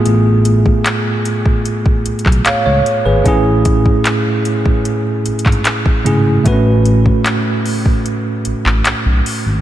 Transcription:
0.00 2.81 A2 medium
0.00 2.81 A3 medium
0.00 2.82 B3 medium
0.00 2.82 F4 medium
0.00 2.43 G#4 medium
0.06 0.71 A1 loud
0.06 closed hi-hat medium
0.45 closed hi-hat medium
0.66 kick medium
0.86 clap loud
0.86 closed hi-hat medium
1.25 closed hi-hat medium
1.46 kick medium
1.65 closed hi-hat medium
1.86 kick loud
2.06 2.14 B1 soft
2.06 closed hi-hat medium
2.19 closed hi-hat soft
2.26 2.42 B1 medium
2.26 kick loud
2.26 clap medium
2.32 closed hi-hat soft
2.46 2.65 C#5 medium
2.46 2.65 F5 medium
2.46 clap loud
2.46 closed hi-hat medium
2.66 2.82 C#2 medium
2.66 3.04 C#5 medium
2.86 closed hi-hat medium
3.06 3.22 G#1 medium
3.06 3.27 G#4 medium
3.06 3.44 B4 medium
3.24 3.90 A1 loud
3.24 6.01 A2 medium
3.24 6.01 A3 medium
3.24 6.02 C#4 medium
3.24 6.02 E4 medium
3.24 kick loud
3.24 closed hi-hat medium
3.28 6.03 G#4 medium
3.65 kick medium
3.65 closed hi-hat medium
3.86 kick medium
4.05 clap loud
4.05 closed hi-hat medium
4.45 closed hi-hat medium
4.66 kick medium
4.85 closed hi-hat medium
5.26 5.34 G#1 soft
5.26 closed hi-hat medium
5.39 closed hi-hat medium
5.46 5.62 G#1 loud
5.46 kick loud
5.46 clap medium
5.52 closed hi-hat soft
5.65 clap loud
5.65 closed hi-hat medium
5.86 kick loud
6.04 6.38 G#1 medium
6.04 6.45 C#3 medium
6.04 6.43 A3 medium
6.04 6.45 C#4 medium
6.04 6.46 E4 medium
6.04 6.46 G#4 medium
6.04 closed hi-hat medium
6.43 7.10 A1 loud
6.43 9.61 A2 medium
6.43 9.61 A3 medium
6.43 6.52 B3 medium
6.43 9.61 F#4 medium
6.43 kick loud
6.43 closed hi-hat medium
6.48 9.61 B4 medium
6.52 9.61 C#4 medium
6.86 closed hi-hat medium
7.06 kick medium
7.26 clap loud
7.26 closed hi-hat medium
7.66 open hi-hat medium
7.86 kick medium
8.06 closed hi-hat medium
8.45 8.54 A1 soft
8.45 closed hi-hat medium
8.66 8.82 A1 medium
8.66 clap medium
8.85 clap loud
8.85 closed hi-hat medium
9.06 9.22 B1 medium
9.26 open hi-hat medium
9.46 9.61 G#1 medium

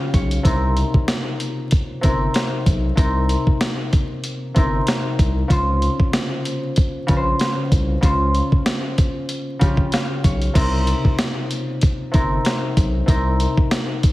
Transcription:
0.00 0.50 C#3 medium
0.00 0.49 C#4 medium
0.00 2.03 F4 medium
0.00 1.88 G4 loud
0.00 1.49 F5 medium
0.13 0.39 B1 medium
0.13 0.49 C#5 medium
0.13 kick medium
0.13 closed hi-hat medium
0.31 closed hi-hat medium
0.43 0.83 C2 loud
0.43 2.00 C3 medium
0.43 2.02 C4 medium
0.43 2.03 D#4 medium
0.43 2.04 A#4 medium
0.43 kick loud
0.43 closed hi-hat loud
0.77 closed hi-hat medium
0.94 kick medium
1.08 snare loud
1.08 closed hi-hat medium
1.40 closed hi-hat medium
1.71 kick loud
1.71 closed hi-hat loud
2.01 2.28 G1 medium
2.01 2.94 C3 medium
2.01 2.96 C4 medium
2.01 2.97 D#4 medium
2.01 2.98 A#4 medium
2.01 kick medium
2.01 closed hi-hat medium
2.34 snare loud
2.34 closed hi-hat medium
2.66 2.91 B1 loud
2.66 kick medium
2.66 closed hi-hat medium
2.95 3.36 C2 loud
2.95 4.53 C3 medium
2.95 4.55 C4 medium
2.95 4.56 D#4 medium
2.95 4.57 A#4 medium
2.95 kick loud
2.95 closed hi-hat loud
3.29 closed hi-hat medium
3.47 kick medium
3.61 snare loud
3.61 closed hi-hat medium
3.93 kick medium
3.93 closed hi-hat medium
4.24 closed hi-hat medium
4.54 4.81 G1 loud
4.54 5.55 C3 medium
4.54 5.54 C4 medium
4.54 7.27 D#4 medium
4.54 6.70 A#4 medium
4.54 kick medium
4.54 closed hi-hat medium
4.87 snare loud
4.87 closed hi-hat medium
5.19 5.44 C2 medium
5.19 kick medium
5.19 closed hi-hat medium
5.48 5.89 C#2 loud
5.48 7.06 C#3 medium
5.48 7.07 C#4 medium
5.48 7.09 F4 medium
5.48 7.13 C5 loud
5.48 kick loud
5.48 closed hi-hat loud
5.82 closed hi-hat medium
6.00 kick medium
6.13 snare loud
6.13 closed hi-hat loud
6.45 closed hi-hat medium
6.76 kick loud
6.76 closed hi-hat loud
7.07 7.34 A#1 medium
7.07 8.00 C#3 loud
7.07 8.02 C#4 medium
7.07 8.03 F4 medium
7.07 7.16 B4 medium
7.07 kick medium
7.07 closed hi-hat medium
7.17 8.04 C5 loud
7.39 snare loud
7.39 closed hi-hat medium
7.72 7.97 C2 medium
7.72 kick medium
7.72 closed hi-hat medium
8.01 8.41 C#2 loud
8.01 9.58 C#3 medium
8.01 9.60 C#4 medium
8.01 9.61 F4 medium
8.01 9.65 C5 loud
8.01 kick loud
8.01 closed hi-hat loud
8.35 closed hi-hat medium
8.52 kick medium
8.66 snare loud
8.66 closed hi-hat loud
8.98 kick loud
8.98 closed hi-hat medium
9.29 closed hi-hat loud
9.59 9.86 A#1 loud
9.59 10.61 C#3 medium
9.59 10.59 C#4 medium
9.59 12.14 F4 medium
9.59 11.98 G4 loud
9.59 kick medium
9.59 closed hi-hat medium
9.77 kick medium
9.92 11.60 F5 medium
9.92 snare loud
9.92 closed hi-hat medium
10.24 10.49 B1 medium
10.24 10.59 C#5 medium
10.24 kick medium
10.24 closed hi-hat medium
10.42 closed hi-hat medium
10.53 10.94 C2 loud
10.53 12.10 C3 medium
10.53 12.12 C4 medium
10.53 12.13 D#4 medium
10.53 12.14 A#4 medium
10.53 kick loud
10.53 closed hi-hat medium
10.53 crash medium
10.87 closed hi-hat medium
11.05 kick medium
11.19 snare loud
11.19 closed hi-hat loud
11.51 closed hi-hat medium
11.81 kick loud
11.81 closed hi-hat medium
12.11 12.39 G1 medium
12.11 13.05 C3 medium
12.11 13.07 C4 medium
12.11 13.08 D#4 medium
12.11 13.09 A#4 medium
12.11 kick medium
12.11 closed hi-hat medium
12.45 snare loud
12.45 closed hi-hat medium
12.77 13.02 B1 loud
12.77 kick medium
12.77 closed hi-hat medium
13.06 13.47 C2 loud
13.06 14.12 C3 medium
13.06 14.12 C4 medium
13.06 14.12 D#4 medium
13.06 14.12 A#4 medium
13.06 kick loud
13.06 closed hi-hat loud
13.40 closed hi-hat medium
13.57 kick medium
13.71 snare loud
13.71 closed hi-hat loud
14.03 kick medium
14.03 closed hi-hat medium

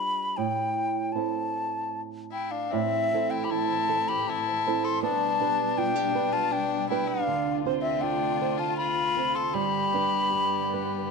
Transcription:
0.00 0.41 G3 medium
0.00 0.47 D4 soft
0.00 0.47 F4 soft
0.00 0.47 B4 medium
0.00 0.38 B5 medium
0.37 2.72 A2 medium
0.37 1.14 G5 medium
1.12 3.13 C4 soft
1.12 3.14 E4 soft
1.12 2.01 A5 medium
1.17 3.14 A4 soft
2.32 2.53 E4 soft
2.32 2.53 G5 medium
2.51 2.72 D4 soft
2.51 2.74 F5 medium
2.71 5.03 A2 medium
2.71 5.01 A2 medium
2.71 5.01 E3 medium
2.71 3.32 C4 medium
2.71 5.01 C4 medium
2.71 3.32 E5 medium
3.13 4.65 C4 soft
3.13 3.50 E4 soft
3.13 3.88 A4 soft
3.30 3.45 E4 medium
3.30 3.46 G5 medium
3.44 3.52 G4 soft
3.44 3.53 B5 medium
3.50 4.10 E4 medium
3.50 4.66 E4 soft
3.50 4.10 A5 medium
3.89 4.66 A4 medium
4.08 4.31 G4 medium
4.08 4.29 B5 medium
4.28 4.86 E4 medium
4.28 4.86 A5 medium
4.67 5.11 C4 soft
4.67 5.11 E4 soft
4.67 5.11 A4 medium
4.84 5.02 A4 medium
4.84 5.02 C6 medium
5.03 7.24 B2 medium
5.03 7.24 G3 medium
5.03 7.26 B3 medium
5.03 5.77 D4 medium
5.03 7.24 D4 medium
5.03 5.79 A5 medium
5.40 6.90 D4 soft
5.40 5.77 G4 soft
5.40 6.14 B4 medium
5.77 6.34 D4 medium
5.77 5.95 F4 medium
5.77 6.34 G5 medium
5.95 6.89 G4 soft
6.15 6.90 B4 medium
6.33 6.53 F4 medium
6.33 6.54 A5 medium
6.51 6.89 D4 medium
6.51 6.89 G5 medium
6.89 7.65 D4 soft
6.89 7.09 E4 medium
6.89 7.34 G4 soft
6.89 7.35 B4 medium
6.89 7.10 G5 medium
7.07 7.56 D4 medium
7.07 7.56 F5 medium
7.26 9.53 D2 medium
7.26 9.53 C3 medium
7.26 10.78 D3 medium
7.26 9.53 F4 medium
7.65 9.15 C4 soft
7.65 8.02 F4 soft
7.65 8.40 C5 medium
7.82 8.02 C4 medium
7.82 8.03 E5 medium
8.00 8.60 D4 medium
8.00 9.16 F4 soft
8.00 8.61 G5 medium
8.41 9.16 C5 medium
8.58 8.78 F4 medium
8.58 8.76 A5 medium
8.77 9.37 F4 medium
8.77 9.36 B5 medium
9.16 9.63 C4 soft
9.16 9.63 F4 soft
9.16 9.64 C5 medium
9.35 9.55 A4 medium
9.35 9.55 C6 medium
9.54 11.11 G2 medium
9.54 11.11 D3 medium
9.54 11.11 G3 medium
9.54 11.11 B3 medium
9.54 11.11 G4 medium
9.54 11.11 B5 medium
9.94 11.11 D4 soft
9.94 10.33 G4 soft
9.94 10.72 B4 soft
10.34 11.11 G4 soft
10.74 11.11 B4 medium

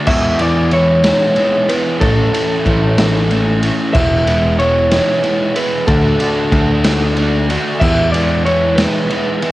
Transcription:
0.06 1.11 E2 loud
0.06 0.39 E3 medium
0.06 0.39 G#3 loud
0.06 0.40 B3 loud
0.06 0.40 E4 medium
0.06 0.41 E5 loud
0.06 kick loud
0.06 crash loud
0.39 0.72 E3 medium
0.39 0.71 G#3 medium
0.39 0.72 B3 medium
0.39 0.72 E4 loud
0.39 0.73 D5 loud
0.39 ride medium
0.71 1.03 E3 medium
0.71 1.03 G#3 medium
0.71 1.04 B3 medium
0.71 1.05 E4 loud
0.71 1.72 C#5 loud
0.71 ride medium
1.04 1.36 E3 medium
1.04 1.36 G#3 medium
1.04 1.37 B3 medium
1.04 1.37 E4 loud
1.04 snare loud
1.04 ride loud
1.36 1.68 E3 medium
1.36 1.68 G#3 medium
1.36 1.69 B3 medium
1.36 1.69 E4 medium
1.36 ride medium
1.68 2.00 E3 medium
1.68 1.99 G#3 medium
1.68 2.01 B3 medium
1.68 2.02 E4 medium
1.68 2.00 B4 medium
1.68 ride medium
2.00 2.27 A1 loud
2.00 2.32 A2 medium
2.00 2.32 E3 medium
2.00 2.32 A3 loud
2.00 2.33 C#4 loud
2.00 2.34 E4 loud
2.00 3.58 A4 medium
2.00 kick loud
2.00 ride loud
2.33 2.64 A2 medium
2.33 2.66 E3 medium
2.33 2.65 A3 loud
2.33 2.66 C#4 loud
2.33 2.66 E4 loud
2.33 ride medium
2.65 3.70 A1 loud
2.65 2.97 A2 medium
2.65 2.97 E3 medium
2.65 2.98 A3 medium
2.65 2.98 C#4 loud
2.65 2.98 E4 loud
2.65 kick medium
2.65 ride medium
2.98 3.29 A2 medium
2.98 3.30 E3 medium
2.98 3.30 A3 loud
2.98 3.30 C#4 loud
2.98 3.31 E4 loud
2.98 snare loud
2.98 ride loud
3.30 3.61 A2 medium
3.30 3.62 E3 medium
3.30 3.63 A3 medium
3.30 3.63 C#4 medium
3.30 3.63 E4 medium
3.30 ride medium
3.63 3.93 A2 medium
3.63 3.93 E3 medium
3.63 3.94 A3 medium
3.63 3.94 C#4 medium
3.63 3.94 E4 medium
3.63 ride medium
3.93 4.99 E1 medium
3.93 4.26 E3 medium
3.93 4.26 G#3 medium
3.93 4.28 B3 loud
3.93 4.27 E4 loud
3.93 4.58 E5 loud
3.93 kick loud
3.93 crash loud
4.27 4.58 E3 medium
4.27 4.59 G#3 loud
4.27 4.60 B3 loud
4.27 4.60 E4 loud
4.27 ride medium
4.59 4.90 E3 medium
4.59 4.91 G#3 medium
4.59 4.92 B3 medium
4.59 4.91 E4 medium
4.59 5.59 C#5 loud
4.59 ride medium
4.91 5.22 E3 medium
4.91 5.23 G#3 medium
4.91 5.24 B3 medium
4.91 5.23 E4 medium
4.91 snare loud
4.91 ride loud
5.23 5.54 E3 medium
5.23 5.55 G#3 medium
5.23 5.56 B3 medium
5.23 5.55 E4 medium
5.23 ride medium
5.55 5.86 E3 medium
5.55 5.86 G#3 medium
5.55 5.88 B3 medium
5.55 5.87 E4 medium
5.55 5.87 B4 medium
5.55 ride medium
5.87 6.14 D2 loud
5.87 6.19 D3 loud
5.87 6.19 A3 medium
5.87 6.20 D4 medium
5.87 6.21 F#4 loud
5.87 7.45 A4 medium
5.87 kick loud
5.87 ride loud
6.20 6.51 D3 loud
6.20 6.52 A3 medium
6.20 6.52 D4 loud
6.20 6.53 F#4 loud
6.20 ride medium
6.52 7.56 D2 loud
6.52 6.83 D3 medium
6.52 6.84 A3 medium
6.52 6.84 D4 medium
6.52 6.84 F#4 loud
6.52 kick medium
6.52 ride medium
6.84 7.16 D3 medium
6.84 7.17 A3 medium
6.84 7.17 D4 medium
6.84 7.17 F#4 loud
6.84 snare loud
6.84 ride loud
7.17 7.48 D3 medium
7.17 7.49 A3 medium
7.17 7.49 D4 medium
7.17 7.50 F#4 medium
7.17 ride medium
7.49 7.80 D3 medium
7.49 7.80 A3 medium
7.49 7.80 D4 medium
7.49 7.81 F#4 loud
7.49 ride medium
7.80 8.86 E2 loud
7.80 8.13 E3 loud
7.80 8.14 G#3 medium
7.80 8.14 B3 medium
7.80 8.15 E4 medium
7.80 8.11 E5 loud
7.80 kick loud
7.80 crash loud
8.12 8.45 E3 loud
8.12 8.46 G#3 medium
8.12 8.46 B3 loud
8.12 8.47 E4 loud
8.12 8.45 D5 loud
8.12 ride medium
8.45 8.78 E3 medium
8.45 8.78 G#3 medium
8.45 8.79 B3 medium
8.45 8.79 E4 loud
8.45 8.79 C#5 medium
8.45 ride medium
8.76 9.10 E3 medium
8.76 9.10 G#3 medium
8.76 9.11 B3 medium
8.76 9.11 E4 loud
8.76 9.52 B4 medium
8.76 snare loud
8.76 ride loud
9.10 9.42 E3 medium
9.10 9.42 G#3 medium
9.10 9.43 B3 medium
9.10 9.43 E4 medium
9.10 ride medium
9.42 9.52 E3 medium
9.42 9.52 G#3 medium
9.42 9.52 B3 medium
9.42 9.52 E4 medium
9.42 ride medium

